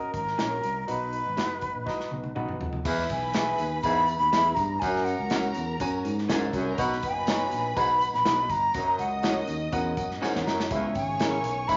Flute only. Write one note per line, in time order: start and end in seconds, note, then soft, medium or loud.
0.00 0.14 A#4 medium
0.15 0.84 A#4 medium
0.89 2.33 B4 loud
3.11 3.80 G#5 loud
3.82 4.17 B5 loud
4.18 4.56 B5 loud
4.55 4.81 A#5 loud
4.80 5.06 G#5 loud
5.05 5.55 F#5 medium
7.05 7.78 G#5 loud
7.77 8.13 B5 loud
8.13 8.52 B5 loud
8.51 8.98 A#5 loud
8.99 9.45 F#5 medium
10.95 11.69 G#5 loud
11.68 11.77 B5 loud